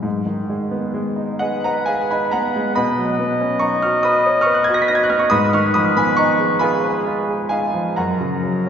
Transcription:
0.03 2.70 G#2 medium
0.26 0.62 D#3 soft
0.50 0.86 G#3 soft
0.71 1.08 B3 soft
0.94 1.31 G#3 soft
1.16 1.54 D#4 soft
1.39 1.77 G#4 medium
1.39 2.71 B4 medium
1.39 1.62 D#5 medium
1.39 1.63 F#5 medium
1.64 2.01 B4 medium
1.64 1.86 F#5 medium
1.64 1.87 A#5 medium
1.86 2.23 G#4 soft
1.86 2.08 F5 medium
1.86 2.09 G#5 medium
2.11 2.46 D#4 soft
2.11 2.31 G#5 medium
2.11 2.32 B5 medium
2.31 2.67 B3 medium
2.31 2.73 F#5 medium
2.31 2.75 A#5 medium
2.56 2.76 G#3 soft
2.75 5.28 B2 medium
2.75 5.28 D#5 medium
2.75 3.57 F#5 medium
2.75 3.61 B5 medium
2.98 3.32 F#3 soft
3.20 3.53 B3 medium
3.41 3.74 C#4 soft
3.59 3.95 D#4 medium
3.59 3.80 A#5 medium
3.59 3.81 C#6 medium
3.82 4.16 F#4 soft
3.82 4.02 C#6 medium
3.82 4.03 F6 medium
4.03 4.38 B4 soft
4.03 4.39 B5 medium
4.03 4.41 D#6 medium
4.26 4.59 C#5 medium
4.41 4.54 C#6 medium
4.41 4.55 F6 medium
4.46 4.80 B4 medium
4.54 4.65 F#6 medium
4.64 4.74 G#6 medium
4.68 5.02 F#4 medium
4.74 4.82 A#6 medium
4.82 4.89 B6 medium
4.88 5.23 D#4 medium
4.88 4.95 A#6 medium
4.95 5.03 G#6 medium
5.03 5.12 F#6 medium
5.10 5.31 B3 soft
5.10 5.20 F6 medium
5.19 5.30 C#6 medium
5.30 7.92 G#2 medium
5.30 6.66 B4 medium
5.30 5.51 B5 medium
5.30 5.52 D#6 loud
5.53 5.88 D#3 medium
5.53 5.74 C#6 medium
5.53 5.75 F6 medium
5.74 6.09 F3 medium
5.74 5.95 B5 medium
5.74 5.96 D#6 medium
5.97 6.31 B3 medium
5.97 6.17 G#5 medium
5.97 6.18 B5 medium
6.17 6.52 D#4 medium
6.17 6.58 A#5 medium
6.17 6.60 C#6 loud
6.39 6.74 G#4 medium
6.59 6.96 F4 medium
6.59 7.46 G#5 medium
6.59 7.50 B5 medium
6.64 7.69 G#4 medium
6.84 7.19 B4 medium
7.06 7.42 F4 medium
7.28 7.64 G#4 medium
7.49 7.87 D#4 soft
7.49 7.93 F5 medium
7.49 7.96 G#5 medium
7.74 7.96 F3 soft
7.96 8.69 F#2 medium
7.96 8.69 A#4 medium
7.96 8.69 F#5 medium
7.96 8.69 A#5 medium
8.21 8.57 C#3 soft
8.43 8.69 F#3 soft

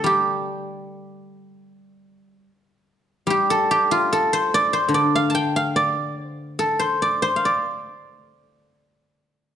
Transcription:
0.00 0.84 D3 soft
0.00 2.47 G3 soft
0.00 2.06 A4 medium
0.00 1.04 C5 medium
0.00 0.69 D5 medium
0.06 2.84 G4 medium
3.27 5.73 G3 medium
3.27 3.70 G4 medium
3.50 4.12 A4 medium
3.71 6.06 G4 medium
3.91 6.44 F4 medium
4.13 6.32 A4 medium
4.33 4.73 C5 medium
4.54 4.94 D5 medium
4.73 6.26 C5 medium
4.88 7.40 D3 soft
4.94 5.76 D5 medium
5.15 5.56 F5 medium
5.30 6.75 A5 medium
5.35 6.90 G5 medium
5.56 7.23 F5 medium
5.76 6.26 D5 medium
6.26 6.79 C5 medium
6.59 8.78 A4 medium
6.79 7.22 C5 medium
7.02 7.45 D5 medium
7.22 9.20 C5 medium
7.36 9.03 F5 soft
7.45 9.55 D5 medium

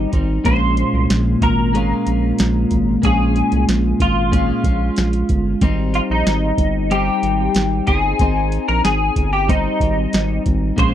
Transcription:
0.00 0.13 G3 medium
0.00 0.12 C4 medium
0.00 0.11 D#4 medium
0.12 0.39 G#1 loud
0.12 0.45 G3 soft
0.12 0.45 C4 soft
0.12 0.45 D#4 soft
0.12 kick medium
0.12 closed hi-hat medium
0.44 0.84 A#1 loud
0.44 1.72 A#2 medium
0.44 1.74 G#3 medium
0.44 1.74 C#4 medium
0.44 1.75 F4 medium
0.44 1.06 C5 loud
0.44 kick medium
0.44 closed hi-hat medium
0.77 closed hi-hat medium
0.93 1.06 C2 medium
1.10 1.35 A#1 loud
1.10 snare loud
1.10 closed hi-hat medium
1.41 1.93 G#1 medium
1.41 3.04 A#4 medium
1.41 kick medium
1.41 closed hi-hat medium
1.73 3.01 A#2 medium
1.73 3.03 G#3 medium
1.73 3.04 C#4 medium
1.73 3.04 F4 medium
1.73 closed hi-hat medium
2.07 2.32 A#1 medium
2.07 closed hi-hat medium
2.39 2.65 A#1 loud
2.39 snare loud
2.39 closed hi-hat medium
2.71 2.97 G#1 medium
2.71 kick medium
2.71 closed hi-hat medium
3.02 3.42 A#1 loud
3.02 4.30 A#2 medium
3.02 4.32 G#3 medium
3.02 4.31 C#4 medium
3.02 3.64 G#4 medium
3.02 kick medium
3.02 closed hi-hat medium
3.06 4.32 F4 medium
3.36 closed hi-hat medium
3.52 3.65 C2 medium
3.52 closed hi-hat soft
3.68 3.94 A#1 medium
3.68 snare loud
3.68 closed hi-hat medium
4.00 4.51 G#1 loud
4.00 5.26 F4 medium
4.00 kick medium
4.00 closed hi-hat medium
4.31 4.64 A#2 medium
4.31 4.64 G#3 medium
4.31 4.64 C#4 medium
4.31 4.62 F4 medium
4.31 kick medium
4.31 closed hi-hat medium
4.64 4.90 A#1 medium
4.64 5.61 G#3 soft
4.64 5.62 C#4 soft
4.64 5.61 F4 soft
4.64 kick medium
4.64 closed hi-hat medium
4.96 5.23 A#1 medium
4.96 snare loud
4.96 closed hi-hat medium
5.13 closed hi-hat soft
5.29 5.55 G1 loud
5.29 kick medium
5.29 closed hi-hat medium
5.61 6.00 G#1 loud
5.61 6.90 G3 medium
5.61 6.90 C4 loud
5.61 6.91 D#4 medium
5.61 kick medium
5.61 closed hi-hat medium
5.94 6.00 F4 medium
5.94 closed hi-hat medium
6.10 6.23 A#1 medium
6.10 6.94 D#4 medium
6.26 6.52 G#1 loud
6.26 snare loud
6.26 closed hi-hat medium
6.58 7.10 G1 medium
6.58 kick medium
6.58 closed hi-hat medium
6.91 7.87 G3 medium
6.91 7.87 C4 medium
6.91 7.85 D#4 medium
6.91 7.87 G4 loud
6.91 closed hi-hat medium
7.23 7.49 G#1 medium
7.23 closed hi-hat medium
7.55 7.81 G#1 medium
7.55 snare loud
7.55 closed hi-hat medium
7.87 8.13 G1 medium
7.87 8.20 C4 soft
7.87 8.19 D#4 soft
7.87 8.68 G#4 medium
7.87 kick medium
7.87 closed hi-hat medium
8.19 8.58 G#1 loud
8.19 9.48 C4 medium
8.19 9.50 D#4 medium
8.19 kick loud
8.19 closed hi-hat medium
8.52 closed hi-hat medium
8.68 8.81 A#1 medium
8.68 8.83 A#4 medium
8.84 9.10 G#1 medium
8.84 9.32 G#4 medium
8.84 snare loud
8.84 closed hi-hat medium
9.16 9.68 G1 medium
9.16 kick medium
9.16 closed hi-hat medium
9.33 9.48 G4 medium
9.49 10.77 G3 medium
9.49 10.78 C4 medium
9.49 10.42 D#4 medium
9.49 10.79 D#4 medium
9.49 kick medium
9.49 closed hi-hat medium
9.80 10.06 G#1 medium
9.80 kick medium
9.80 closed hi-hat medium
10.13 10.39 G#1 medium
10.13 snare loud
10.13 closed hi-hat medium
10.46 10.72 G#1 loud
10.46 kick medium
10.46 closed hi-hat medium
10.76 10.94 A#1 medium
10.76 10.94 A#2 medium
10.76 10.94 G#3 medium
10.76 10.94 C#4 medium
10.76 10.94 C5 loud
10.76 kick loud
10.76 closed hi-hat medium
10.80 10.94 F4 medium

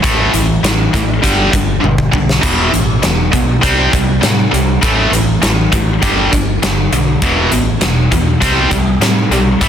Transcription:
0.03 0.26 A1 medium
0.03 0.31 A2 medium
0.03 0.31 E3 medium
0.03 0.32 A3 medium
0.03 kick loud
0.03 closed hi-hat medium
0.33 0.56 A1 medium
0.33 0.60 A2 medium
0.33 0.60 E3 medium
0.33 closed hi-hat medium
0.63 0.86 A1 medium
0.63 0.90 A2 medium
0.63 0.90 E3 medium
0.63 snare loud
0.63 closed hi-hat medium
0.93 1.16 A1 medium
0.93 1.20 A2 medium
0.93 1.20 E3 medium
0.93 kick medium
0.93 closed hi-hat medium
1.22 1.46 G1 medium
1.22 1.50 G2 medium
1.22 1.51 D3 medium
1.22 1.51 G3 medium
1.22 kick medium
1.22 closed hi-hat medium
1.52 1.76 G1 medium
1.52 1.79 G2 medium
1.52 1.79 D3 medium
1.52 kick medium
1.52 closed hi-hat medium
1.81 2.05 G1 medium
1.81 2.09 G2 medium
1.81 2.09 D3 medium
1.81 high tom medium
1.98 kick medium
2.12 2.36 B1 medium
2.12 2.39 G2 medium
2.12 2.39 D3 medium
2.12 kick medium
2.29 snare medium
2.41 2.65 E1 medium
2.41 2.70 E2 medium
2.41 2.70 B2 medium
2.41 2.71 E3 medium
2.41 kick loud
2.41 closed hi-hat medium
2.41 splash medium
2.71 2.96 A1 medium
2.71 2.99 E2 medium
2.71 2.99 B2 medium
2.71 closed hi-hat medium
3.02 3.25 E1 medium
3.02 3.29 E2 medium
3.02 3.29 B2 medium
3.02 snare loud
3.02 closed hi-hat medium
3.32 3.55 B1 medium
3.32 3.59 E2 medium
3.32 3.59 B2 medium
3.32 kick medium
3.32 closed hi-hat medium
3.61 3.85 C2 medium
3.61 3.90 C3 medium
3.61 3.90 G3 medium
3.61 3.91 C4 loud
3.61 kick medium
3.61 closed hi-hat medium
3.92 4.16 C2 medium
3.92 4.19 C3 medium
3.92 4.19 G3 medium
3.92 kick medium
3.92 closed hi-hat medium
4.21 4.45 A2 medium
4.21 4.49 C3 medium
4.21 4.49 G3 medium
4.21 snare loud
4.21 closed hi-hat medium
4.51 4.75 C2 medium
4.51 4.79 C3 medium
4.51 4.79 G3 medium
4.51 closed hi-hat medium
4.81 5.05 A1 medium
4.81 5.10 A2 medium
4.81 5.10 E3 medium
4.81 5.11 A3 loud
4.81 kick loud
4.81 closed hi-hat medium
5.11 5.34 A1 medium
5.11 5.39 A2 medium
5.11 5.39 E3 medium
5.11 closed hi-hat medium
5.42 5.65 A1 medium
5.42 5.69 A2 medium
5.42 5.69 E3 medium
5.42 snare loud
5.42 closed hi-hat medium
5.72 5.95 A1 medium
5.72 5.99 A2 medium
5.72 5.99 E3 medium
5.72 kick medium
5.72 closed hi-hat medium
6.02 6.25 G1 medium
6.02 6.30 G2 medium
6.02 6.30 D3 medium
6.02 6.31 G3 medium
6.02 kick medium
6.02 closed hi-hat medium
6.32 6.55 G1 medium
6.32 6.59 G2 medium
6.32 6.59 D3 medium
6.32 kick medium
6.32 closed hi-hat medium
6.62 6.84 G1 medium
6.62 6.89 G2 medium
6.62 6.89 D3 medium
6.62 snare loud
6.62 closed hi-hat medium
6.91 7.14 B1 medium
6.91 7.19 G2 medium
6.91 7.19 D3 medium
6.91 closed hi-hat medium
7.22 7.44 E1 loud
7.22 7.50 E2 medium
7.22 7.50 B2 loud
7.22 7.51 E3 medium
7.22 kick loud
7.22 closed hi-hat medium
7.52 7.74 A1 medium
7.52 7.79 E2 medium
7.52 7.79 B2 medium
7.52 closed hi-hat medium
7.81 8.04 E1 medium
7.81 8.08 E2 medium
7.81 8.09 B2 medium
7.81 snare loud
7.81 closed hi-hat medium
8.11 8.38 E2 medium
8.11 8.34 E2 medium
8.11 8.38 B2 medium
8.11 kick medium
8.11 closed hi-hat medium
8.41 8.64 C2 medium
8.41 8.69 C3 medium
8.41 8.69 G3 loud
8.41 8.69 C4 medium
8.41 kick medium
8.41 closed hi-hat medium
8.71 8.94 C2 medium
8.71 8.98 C3 medium
8.71 8.98 G3 medium
8.71 kick medium
8.71 closed hi-hat medium
8.99 9.22 A2 medium
8.99 9.28 C3 medium
8.99 9.28 G3 medium
8.99 snare loud
8.99 closed hi-hat medium
9.29 9.52 B1 medium
9.29 9.58 C3 medium
9.29 9.58 G3 medium
9.29 closed hi-hat medium
9.61 9.69 A1 loud
9.61 9.69 A2 medium
9.61 9.69 E3 loud
9.61 9.69 A3 loud
9.61 kick loud
9.61 closed hi-hat medium

